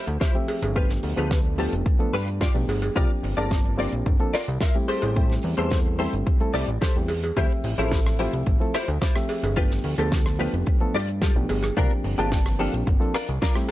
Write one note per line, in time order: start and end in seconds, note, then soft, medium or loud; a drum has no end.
0.07 0.18 D2 loud
0.07 closed hi-hat medium
0.20 0.35 E4 medium
0.20 0.35 F4 medium
0.20 0.35 G4 medium
0.20 0.35 C5 medium
0.20 kick loud
0.20 snare loud
0.20 closed hi-hat medium
0.34 0.73 F3 medium
0.34 0.73 A3 medium
0.34 0.73 C4 medium
0.34 0.73 G4 loud
0.34 0.73 E5 medium
0.34 closed hi-hat soft
0.48 muted clean electric guitar stroke soft
0.48 open hi-hat medium
0.48 cowbell medium
0.62 0.99 G1 medium
0.62 closed hi-hat medium
0.62 cowbell medium
0.75 1.14 F3 medium
0.75 1.14 A3 medium
0.75 1.14 B3 medium
0.75 1.14 D4 medium
0.75 0.90 F4 loud
0.75 0.90 G4 medium
0.75 1.14 G4 loud
0.75 0.90 B4 loud
0.75 kick loud
0.75 closed hi-hat medium
0.89 snare soft
0.89 closed hi-hat soft
1.03 1.14 D2 medium
1.03 muted clean electric guitar stroke soft
1.03 open hi-hat loud
1.16 1.68 D2 loud
1.16 1.55 F3 medium
1.16 1.55 A3 medium
1.16 1.55 B3 medium
1.16 1.55 D4 medium
1.16 1.38 F4 medium
1.16 1.38 G4 medium
1.16 1.55 A4 medium
1.16 1.38 B4 loud
1.16 closed hi-hat medium
1.16 cowbell medium
1.31 kick loud
1.31 snare loud
1.31 closed hi-hat medium
1.45 closed hi-hat soft
1.58 1.96 F3 loud
1.58 1.96 A3 medium
1.58 1.97 B3 medium
1.58 1.97 D4 medium
1.58 1.73 F4 medium
1.58 1.73 G4 medium
1.58 1.97 G4 loud
1.58 1.73 A4 medium
1.58 open hi-hat loud
1.73 1.83 F1 medium
1.73 closed hi-hat medium
1.86 muted clean electric guitar stroke soft
1.86 kick loud
1.86 closed hi-hat medium
1.99 2.15 F3 medium
1.99 2.15 A3 medium
1.99 2.15 B3 medium
1.99 2.15 D4 medium
1.99 2.15 A4 loud
1.99 closed hi-hat soft
2.13 2.50 G2 medium
2.13 2.28 F4 loud
2.13 2.28 G4 medium
2.13 2.28 B4 loud
2.13 open hi-hat medium
2.28 closed hi-hat medium
2.41 2.55 F4 medium
2.41 2.55 G4 medium
2.41 2.55 D5 medium
2.41 kick loud
2.41 snare loud
2.41 closed hi-hat medium
2.54 2.66 B1 medium
2.54 2.92 F3 medium
2.54 2.92 A3 medium
2.54 2.93 B3 medium
2.54 2.93 D4 medium
2.54 2.93 G4 loud
2.54 closed hi-hat soft
2.68 2.90 G1 loud
2.68 muted clean electric guitar stroke soft
2.68 open hi-hat loud
2.68 cowbell medium
2.82 closed hi-hat medium
2.82 cowbell medium
2.95 3.07 C2 loud
2.95 3.34 F3 medium
2.95 3.34 A#3 medium
2.95 3.34 C4 medium
2.95 3.34 D4 medium
2.95 3.10 F4 loud
2.95 3.35 G4 loud
2.95 3.10 A#4 medium
2.95 3.10 D5 loud
2.95 kick loud
2.95 closed hi-hat medium
3.10 closed hi-hat soft
3.23 3.34 G1 medium
3.23 muted clean electric guitar stroke soft
3.23 open hi-hat loud
3.37 3.88 G1 medium
3.37 3.75 F3 medium
3.37 3.75 A#3 medium
3.37 3.75 C4 medium
3.37 3.76 D4 medium
3.37 3.58 F4 medium
3.37 3.58 A#4 medium
3.37 3.58 D5 loud
3.37 3.76 A5 medium
3.37 closed hi-hat medium
3.37 cowbell medium
3.51 kick loud
3.51 snare loud
3.51 closed hi-hat medium
3.66 closed hi-hat soft
3.78 4.16 F3 medium
3.78 4.16 A#3 medium
3.78 4.17 C4 medium
3.78 4.17 D4 medium
3.78 3.93 F4 medium
3.78 4.17 G4 loud
3.78 3.93 A#4 medium
3.78 3.93 D5 medium
3.78 open hi-hat medium
3.92 4.03 A#1 medium
3.92 closed hi-hat medium
4.06 4.17 G1 medium
4.06 muted clean electric guitar stroke soft
4.06 kick loud
4.06 closed hi-hat medium
4.19 4.35 F3 medium
4.19 4.35 A#3 medium
4.19 4.35 C4 medium
4.19 4.35 D4 medium
4.19 4.35 A4 loud
4.19 closed hi-hat soft
4.34 4.48 F4 loud
4.34 4.48 A#4 loud
4.34 4.48 D5 loud
4.34 snare soft
4.34 open hi-hat loud
4.48 4.59 C2 loud
4.48 closed hi-hat medium
4.61 4.75 F4 medium
4.61 4.75 A#4 medium
4.61 4.75 E5 medium
4.61 kick loud
4.61 snare loud
4.61 closed hi-hat medium
4.75 5.13 G3 medium
4.75 5.13 A3 medium
4.75 5.13 C4 medium
4.75 5.13 E4 medium
4.75 5.13 G4 loud
4.75 closed hi-hat soft
4.88 5.33 G4 medium
4.88 5.33 A4 medium
4.88 5.33 C5 loud
4.88 open hi-hat medium
4.88 cowbell medium
5.02 5.39 A1 medium
5.02 closed hi-hat medium
5.02 cowbell medium
5.16 5.54 G3 medium
5.16 5.54 A3 medium
5.16 5.55 C4 medium
5.16 5.55 E4 medium
5.16 5.55 G4 loud
5.16 kick loud
5.16 closed hi-hat medium
5.29 snare soft
5.29 closed hi-hat soft
5.43 5.55 E2 medium
5.43 muted clean electric guitar stroke soft
5.43 open hi-hat loud
5.57 6.08 E2 loud
5.57 5.95 G3 medium
5.57 5.95 A3 medium
5.57 5.96 C4 medium
5.57 5.96 E4 medium
5.57 5.78 G4 medium
5.57 5.96 A4 medium
5.57 5.78 A4 medium
5.57 5.78 C5 loud
5.57 closed hi-hat medium
5.57 cowbell medium
5.71 kick loud
5.71 snare loud
5.71 closed hi-hat medium
5.84 closed hi-hat soft
5.99 6.37 G3 loud
5.99 6.37 A3 medium
5.99 6.37 C4 medium
5.99 6.37 E4 medium
5.99 6.13 G4 medium
5.99 6.38 G4 loud
5.99 6.13 A4 medium
5.99 6.13 C5 medium
5.99 open hi-hat medium
6.13 6.23 G1 medium
6.13 closed hi-hat medium
6.26 muted clean electric guitar stroke soft
6.26 kick loud
6.26 closed hi-hat medium
6.40 6.51 G3 medium
6.40 6.51 A3 medium
6.40 6.51 C4 medium
6.40 6.52 E4 medium
6.40 6.52 A4 loud
6.40 closed hi-hat soft
6.54 6.65 C2 medium
6.54 6.69 G3 medium
6.54 6.70 A3 medium
6.54 6.70 C4 medium
6.54 6.70 E4 medium
6.54 6.68 G4 loud
6.54 6.70 G4 medium
6.54 6.68 A4 medium
6.54 6.68 D5 loud
6.54 open hi-hat loud
6.67 6.78 A1 medium
6.67 closed hi-hat medium
6.81 6.95 G4 medium
6.81 6.95 A4 medium
6.81 6.96 C5 medium
6.81 kick loud
6.81 snare loud
6.81 closed hi-hat medium
6.96 7.32 E2 medium
6.96 7.11 G3 medium
6.96 7.11 A3 medium
6.96 7.11 C4 medium
6.96 7.11 E4 medium
6.96 7.11 G4 medium
6.96 closed hi-hat soft
7.08 muted clean electric guitar stroke soft
7.08 open hi-hat medium
7.08 cowbell medium
7.23 closed hi-hat medium
7.23 cowbell medium
7.36 7.48 D2 loud
7.36 7.75 F3 medium
7.36 7.75 A3 medium
7.36 7.75 C4 medium
7.36 7.51 E4 medium
7.36 7.51 F4 medium
7.36 7.51 G4 medium
7.36 7.75 G4 loud
7.36 7.51 C5 loud
7.36 7.75 E5 medium
7.36 kick loud
7.36 closed hi-hat medium
7.52 closed hi-hat soft
7.64 7.75 A1 medium
7.64 muted clean electric guitar stroke soft
7.64 open hi-hat loud
7.78 8.28 A1 medium
7.78 8.16 F3 medium
7.78 8.16 A3 medium
7.78 8.16 C4 medium
7.78 7.99 E4 medium
7.78 7.99 F4 medium
7.78 7.99 G4 medium
7.78 8.17 A4 medium
7.78 7.99 C5 medium
7.78 8.16 E5 medium
7.78 closed hi-hat medium
7.78 cowbell medium
7.92 kick loud
7.92 snare loud
7.92 closed hi-hat medium
8.06 cross-stick medium
8.06 closed hi-hat soft
8.19 8.57 F3 loud
8.19 8.57 A3 medium
8.19 8.57 C4 medium
8.19 8.33 E4 medium
8.19 8.33 F4 medium
8.19 8.33 G4 medium
8.19 8.58 G4 loud
8.19 8.33 C5 medium
8.19 8.58 E5 medium
8.19 open hi-hat loud
8.33 8.44 C2 medium
8.33 closed hi-hat medium
8.46 8.58 A1 medium
8.46 muted clean electric guitar stroke soft
8.46 kick loud
8.46 closed hi-hat medium
8.60 8.75 F3 medium
8.60 8.76 A3 medium
8.60 8.76 C4 medium
8.60 8.76 E4 medium
8.60 8.76 A4 medium
8.60 closed hi-hat soft
8.74 8.88 E4 loud
8.74 8.88 F4 medium
8.74 8.88 G4 medium
8.74 8.88 C5 loud
8.74 cross-stick medium
8.74 snare soft
8.74 open hi-hat loud
8.88 8.99 D2 loud
8.88 closed hi-hat medium
9.01 9.16 E4 medium
9.01 9.16 F4 medium
9.01 9.16 G4 medium
9.01 9.16 C5 medium
9.01 kick loud
9.01 snare loud
9.01 closed hi-hat medium
9.15 9.53 F3 medium
9.15 9.53 A3 medium
9.15 9.54 C4 medium
9.15 9.54 G4 loud
9.15 9.54 E5 medium
9.15 cross-stick medium
9.15 closed hi-hat soft
9.29 muted clean electric guitar stroke soft
9.29 open hi-hat medium
9.29 cowbell medium
9.43 9.79 G1 medium
9.43 closed hi-hat medium
9.43 cowbell medium
9.56 9.95 F3 medium
9.56 9.95 A3 medium
9.56 9.95 B3 medium
9.56 9.95 D4 medium
9.56 9.71 F4 loud
9.56 9.71 G4 medium
9.56 9.95 G4 loud
9.56 9.71 B4 loud
9.56 kick loud
9.56 closed hi-hat medium
9.70 snare soft
9.70 closed hi-hat soft
9.84 9.95 D2 medium
9.84 muted clean electric guitar stroke soft
9.84 open hi-hat loud
9.98 10.48 D2 medium
9.98 10.36 F3 medium
9.98 10.36 A3 medium
9.98 10.36 B3 medium
9.98 10.36 D4 medium
9.98 10.19 F4 medium
9.98 10.19 G4 medium
9.98 10.19 A4 medium
9.98 10.36 A4 medium
9.98 closed hi-hat medium
9.98 cowbell medium
10.12 kick loud
10.12 snare loud
10.12 closed hi-hat medium
10.26 cross-stick medium
10.26 closed hi-hat soft
10.39 10.77 F3 loud
10.39 10.77 A3 medium
10.39 10.78 B3 medium
10.39 10.78 D4 medium
10.39 10.53 F4 medium
10.39 10.53 G4 medium
10.39 10.78 G4 loud
10.39 10.53 B4 medium
10.39 open hi-hat medium
10.53 10.64 F1 medium
10.53 closed hi-hat medium
10.66 muted clean electric guitar stroke soft
10.66 kick loud
10.66 closed hi-hat medium
10.80 10.96 F3 medium
10.80 10.96 A3 medium
10.80 10.96 B3 medium
10.80 10.96 D4 medium
10.80 10.96 A4 loud
10.80 closed hi-hat soft
10.94 11.31 G2 medium
10.94 11.09 F4 medium
10.94 11.09 G4 medium
10.94 11.09 D5 loud
10.94 open hi-hat loud
11.09 closed hi-hat medium
11.22 11.36 F4 medium
11.22 11.36 G4 medium
11.22 11.36 A4 medium
11.22 kick loud
11.22 snare loud
11.22 closed hi-hat medium
11.35 11.46 B1 medium
11.35 11.73 F3 medium
11.35 11.74 A3 medium
11.35 11.74 B3 medium
11.35 11.74 D4 medium
11.35 11.74 G4 loud
11.35 closed hi-hat soft
11.49 11.71 G1 loud
11.49 muted clean electric guitar stroke soft
11.49 open hi-hat loud
11.49 cowbell medium
11.63 cross-stick medium
11.63 closed hi-hat medium
11.63 cowbell medium
11.77 11.88 C2 loud
11.77 12.15 F3 medium
11.77 12.15 A#3 medium
11.77 12.15 C4 medium
11.77 11.91 D4 loud
11.77 12.15 D4 medium
11.77 11.91 F4 medium
11.77 12.15 G4 loud
11.77 11.91 A#4 loud
11.77 kick loud
11.77 closed hi-hat medium
11.91 closed hi-hat soft
12.04 12.15 G1 medium
12.04 muted clean electric guitar stroke soft
12.04 open hi-hat medium
12.18 12.68 G1 loud
12.18 12.56 F3 medium
12.18 12.56 A#3 medium
12.18 12.56 C4 medium
12.18 12.56 D4 medium
12.18 12.39 D4 medium
12.18 12.39 F4 medium
12.18 12.39 G4 medium
12.18 12.56 A5 loud
12.18 closed hi-hat medium
12.18 cowbell medium
12.32 kick loud
12.32 snare loud
12.32 closed hi-hat medium
12.46 cross-stick medium
12.46 closed hi-hat soft
12.59 12.97 F3 loud
12.59 12.97 A#3 medium
12.59 12.98 C4 medium
12.59 12.98 D4 medium
12.59 12.74 D4 medium
12.59 12.74 F4 medium
12.59 12.98 G4 loud
12.59 12.74 A4 medium
12.59 open hi-hat loud
12.73 12.84 A#1 medium
12.73 closed hi-hat medium
12.87 12.98 G1 medium
12.87 muted clean electric guitar stroke soft
12.87 kick loud
12.87 closed hi-hat medium
13.00 13.16 F3 medium
13.00 13.16 A#3 medium
13.00 13.16 C4 medium
13.00 13.16 D4 medium
13.00 13.16 A4 loud
13.00 closed hi-hat soft
13.14 13.29 D4 loud
13.14 13.29 F4 loud
13.14 13.29 A#4 loud
13.14 cross-stick medium
13.14 snare soft
13.14 open hi-hat loud
13.29 13.39 C2 loud
13.29 closed hi-hat medium
13.42 13.56 D4 medium
13.42 13.56 F4 medium
13.42 13.56 A#4 medium
13.42 kick loud
13.42 snare loud
13.42 closed hi-hat medium
13.55 13.71 G3 loud
13.55 13.71 A3 medium
13.55 13.71 C4 medium
13.55 13.71 E4 medium
13.55 13.71 G4 loud
13.55 cross-stick medium
13.55 closed hi-hat soft